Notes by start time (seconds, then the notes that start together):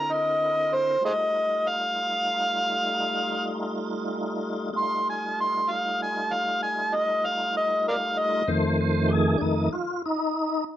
Already playing: D3 C4 E4 A#4 A#5
0.12 D#5
0.74 C5
1.01 G3 A3 D#4 F4
1.05 G#4 C5 D#5
1.68 F5
4.73 G3 A3 D#4 F4
4.77 C6
5.10 G#5
5.41 C6
5.71 F5
6.02 G#5
6.33 F5
6.62 G#5
6.94 D#5
7.25 F5
7.57 D#5
7.88 A#4 D5 F5
8.18 D#5
8.48 F2 D#3 A3 C5
8.81 C5
9.08 G4
9.13 G#4
9.38 F2 D#3 D4 D#4
9.42 A3
9.73 F4
10.06 D#4